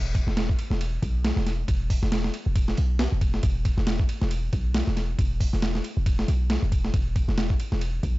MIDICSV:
0, 0, Header, 1, 3, 480
1, 0, Start_track
1, 0, Tempo, 437956
1, 1843, Time_signature, 4, 2, 24, 8
1, 8972, End_track
2, 0, Start_track
2, 0, Title_t, "808-style bass"
2, 0, Program_c, 0, 38
2, 0, Note_on_c, 0, 28, 97
2, 252, Note_off_c, 0, 28, 0
2, 295, Note_on_c, 0, 28, 77
2, 604, Note_off_c, 0, 28, 0
2, 772, Note_on_c, 0, 28, 88
2, 1083, Note_off_c, 0, 28, 0
2, 1124, Note_on_c, 0, 35, 84
2, 1452, Note_off_c, 0, 35, 0
2, 1496, Note_on_c, 0, 28, 87
2, 1804, Note_off_c, 0, 28, 0
2, 1846, Note_on_c, 0, 28, 98
2, 2173, Note_off_c, 0, 28, 0
2, 2219, Note_on_c, 0, 28, 80
2, 2526, Note_off_c, 0, 28, 0
2, 2699, Note_on_c, 0, 28, 84
2, 3006, Note_off_c, 0, 28, 0
2, 3048, Note_on_c, 0, 35, 86
2, 3374, Note_off_c, 0, 35, 0
2, 3422, Note_on_c, 0, 28, 85
2, 3727, Note_off_c, 0, 28, 0
2, 3763, Note_on_c, 0, 28, 99
2, 4092, Note_off_c, 0, 28, 0
2, 4137, Note_on_c, 0, 28, 80
2, 4445, Note_off_c, 0, 28, 0
2, 4622, Note_on_c, 0, 28, 87
2, 4927, Note_off_c, 0, 28, 0
2, 4966, Note_on_c, 0, 35, 84
2, 5293, Note_off_c, 0, 35, 0
2, 5341, Note_on_c, 0, 28, 86
2, 5647, Note_off_c, 0, 28, 0
2, 5685, Note_on_c, 0, 28, 98
2, 6013, Note_off_c, 0, 28, 0
2, 6064, Note_on_c, 0, 28, 79
2, 6369, Note_off_c, 0, 28, 0
2, 6542, Note_on_c, 0, 28, 85
2, 6848, Note_off_c, 0, 28, 0
2, 6886, Note_on_c, 0, 35, 82
2, 7213, Note_off_c, 0, 35, 0
2, 7261, Note_on_c, 0, 28, 93
2, 7567, Note_off_c, 0, 28, 0
2, 7604, Note_on_c, 0, 28, 97
2, 7932, Note_off_c, 0, 28, 0
2, 7981, Note_on_c, 0, 28, 79
2, 8287, Note_off_c, 0, 28, 0
2, 8461, Note_on_c, 0, 28, 88
2, 8767, Note_off_c, 0, 28, 0
2, 8804, Note_on_c, 0, 35, 82
2, 8972, Note_off_c, 0, 35, 0
2, 8972, End_track
3, 0, Start_track
3, 0, Title_t, "Drums"
3, 162, Note_on_c, 9, 36, 90
3, 165, Note_on_c, 9, 51, 62
3, 272, Note_off_c, 9, 36, 0
3, 275, Note_off_c, 9, 51, 0
3, 305, Note_on_c, 9, 38, 44
3, 405, Note_off_c, 9, 38, 0
3, 405, Note_on_c, 9, 38, 108
3, 405, Note_on_c, 9, 51, 81
3, 515, Note_off_c, 9, 38, 0
3, 515, Note_off_c, 9, 51, 0
3, 540, Note_on_c, 9, 36, 94
3, 643, Note_on_c, 9, 51, 67
3, 650, Note_off_c, 9, 36, 0
3, 752, Note_off_c, 9, 51, 0
3, 782, Note_on_c, 9, 38, 53
3, 886, Note_on_c, 9, 51, 87
3, 892, Note_off_c, 9, 38, 0
3, 996, Note_off_c, 9, 51, 0
3, 1123, Note_on_c, 9, 36, 91
3, 1125, Note_on_c, 9, 51, 66
3, 1233, Note_off_c, 9, 36, 0
3, 1235, Note_off_c, 9, 51, 0
3, 1365, Note_on_c, 9, 38, 112
3, 1365, Note_on_c, 9, 51, 85
3, 1474, Note_off_c, 9, 38, 0
3, 1474, Note_off_c, 9, 51, 0
3, 1504, Note_on_c, 9, 38, 50
3, 1606, Note_off_c, 9, 38, 0
3, 1606, Note_on_c, 9, 38, 38
3, 1606, Note_on_c, 9, 51, 67
3, 1716, Note_off_c, 9, 38, 0
3, 1716, Note_off_c, 9, 51, 0
3, 1843, Note_on_c, 9, 36, 107
3, 1844, Note_on_c, 9, 51, 88
3, 1953, Note_off_c, 9, 36, 0
3, 1954, Note_off_c, 9, 51, 0
3, 2083, Note_on_c, 9, 36, 89
3, 2084, Note_on_c, 9, 46, 71
3, 2192, Note_off_c, 9, 36, 0
3, 2194, Note_off_c, 9, 46, 0
3, 2222, Note_on_c, 9, 38, 48
3, 2323, Note_off_c, 9, 38, 0
3, 2323, Note_on_c, 9, 38, 106
3, 2323, Note_on_c, 9, 51, 78
3, 2433, Note_off_c, 9, 38, 0
3, 2433, Note_off_c, 9, 51, 0
3, 2459, Note_on_c, 9, 38, 53
3, 2562, Note_on_c, 9, 51, 69
3, 2568, Note_off_c, 9, 38, 0
3, 2672, Note_off_c, 9, 51, 0
3, 2801, Note_on_c, 9, 36, 109
3, 2801, Note_on_c, 9, 51, 84
3, 2911, Note_off_c, 9, 36, 0
3, 2911, Note_off_c, 9, 51, 0
3, 2939, Note_on_c, 9, 38, 54
3, 3041, Note_on_c, 9, 51, 66
3, 3049, Note_off_c, 9, 38, 0
3, 3150, Note_off_c, 9, 51, 0
3, 3280, Note_on_c, 9, 38, 115
3, 3280, Note_on_c, 9, 51, 85
3, 3389, Note_off_c, 9, 38, 0
3, 3389, Note_off_c, 9, 51, 0
3, 3522, Note_on_c, 9, 36, 93
3, 3522, Note_on_c, 9, 51, 65
3, 3631, Note_off_c, 9, 36, 0
3, 3631, Note_off_c, 9, 51, 0
3, 3659, Note_on_c, 9, 38, 45
3, 3759, Note_on_c, 9, 51, 86
3, 3761, Note_on_c, 9, 36, 108
3, 3768, Note_off_c, 9, 38, 0
3, 3869, Note_off_c, 9, 51, 0
3, 3871, Note_off_c, 9, 36, 0
3, 4001, Note_on_c, 9, 36, 90
3, 4001, Note_on_c, 9, 51, 62
3, 4111, Note_off_c, 9, 36, 0
3, 4111, Note_off_c, 9, 51, 0
3, 4140, Note_on_c, 9, 38, 45
3, 4240, Note_off_c, 9, 38, 0
3, 4240, Note_on_c, 9, 38, 102
3, 4240, Note_on_c, 9, 51, 79
3, 4349, Note_off_c, 9, 38, 0
3, 4349, Note_off_c, 9, 51, 0
3, 4379, Note_on_c, 9, 36, 96
3, 4482, Note_on_c, 9, 51, 69
3, 4488, Note_off_c, 9, 36, 0
3, 4591, Note_off_c, 9, 51, 0
3, 4620, Note_on_c, 9, 38, 54
3, 4723, Note_on_c, 9, 51, 86
3, 4729, Note_off_c, 9, 38, 0
3, 4832, Note_off_c, 9, 51, 0
3, 4962, Note_on_c, 9, 51, 66
3, 4963, Note_on_c, 9, 36, 93
3, 5072, Note_off_c, 9, 51, 0
3, 5073, Note_off_c, 9, 36, 0
3, 5201, Note_on_c, 9, 38, 111
3, 5201, Note_on_c, 9, 51, 86
3, 5310, Note_off_c, 9, 38, 0
3, 5310, Note_off_c, 9, 51, 0
3, 5344, Note_on_c, 9, 38, 49
3, 5446, Note_off_c, 9, 38, 0
3, 5446, Note_on_c, 9, 38, 40
3, 5446, Note_on_c, 9, 51, 66
3, 5556, Note_off_c, 9, 38, 0
3, 5556, Note_off_c, 9, 51, 0
3, 5684, Note_on_c, 9, 36, 104
3, 5686, Note_on_c, 9, 51, 84
3, 5794, Note_off_c, 9, 36, 0
3, 5796, Note_off_c, 9, 51, 0
3, 5924, Note_on_c, 9, 36, 90
3, 5925, Note_on_c, 9, 46, 75
3, 6033, Note_off_c, 9, 36, 0
3, 6034, Note_off_c, 9, 46, 0
3, 6063, Note_on_c, 9, 38, 46
3, 6164, Note_off_c, 9, 38, 0
3, 6164, Note_on_c, 9, 38, 105
3, 6164, Note_on_c, 9, 51, 82
3, 6274, Note_off_c, 9, 38, 0
3, 6274, Note_off_c, 9, 51, 0
3, 6304, Note_on_c, 9, 38, 54
3, 6406, Note_on_c, 9, 51, 67
3, 6413, Note_off_c, 9, 38, 0
3, 6515, Note_off_c, 9, 51, 0
3, 6644, Note_on_c, 9, 36, 107
3, 6644, Note_on_c, 9, 51, 87
3, 6754, Note_off_c, 9, 36, 0
3, 6754, Note_off_c, 9, 51, 0
3, 6784, Note_on_c, 9, 38, 55
3, 6886, Note_on_c, 9, 51, 67
3, 6893, Note_off_c, 9, 38, 0
3, 6995, Note_off_c, 9, 51, 0
3, 7122, Note_on_c, 9, 38, 113
3, 7122, Note_on_c, 9, 51, 84
3, 7232, Note_off_c, 9, 38, 0
3, 7232, Note_off_c, 9, 51, 0
3, 7364, Note_on_c, 9, 36, 93
3, 7366, Note_on_c, 9, 51, 66
3, 7474, Note_off_c, 9, 36, 0
3, 7476, Note_off_c, 9, 51, 0
3, 7503, Note_on_c, 9, 38, 46
3, 7604, Note_on_c, 9, 36, 109
3, 7604, Note_on_c, 9, 51, 85
3, 7612, Note_off_c, 9, 38, 0
3, 7714, Note_off_c, 9, 36, 0
3, 7714, Note_off_c, 9, 51, 0
3, 7844, Note_on_c, 9, 36, 91
3, 7845, Note_on_c, 9, 51, 63
3, 7954, Note_off_c, 9, 36, 0
3, 7955, Note_off_c, 9, 51, 0
3, 7986, Note_on_c, 9, 38, 44
3, 8085, Note_off_c, 9, 38, 0
3, 8085, Note_on_c, 9, 38, 104
3, 8085, Note_on_c, 9, 51, 81
3, 8194, Note_off_c, 9, 38, 0
3, 8194, Note_off_c, 9, 51, 0
3, 8222, Note_on_c, 9, 36, 96
3, 8326, Note_on_c, 9, 51, 69
3, 8331, Note_off_c, 9, 36, 0
3, 8435, Note_off_c, 9, 51, 0
3, 8462, Note_on_c, 9, 38, 53
3, 8564, Note_on_c, 9, 51, 85
3, 8571, Note_off_c, 9, 38, 0
3, 8674, Note_off_c, 9, 51, 0
3, 8803, Note_on_c, 9, 36, 92
3, 8805, Note_on_c, 9, 51, 65
3, 8913, Note_off_c, 9, 36, 0
3, 8914, Note_off_c, 9, 51, 0
3, 8972, End_track
0, 0, End_of_file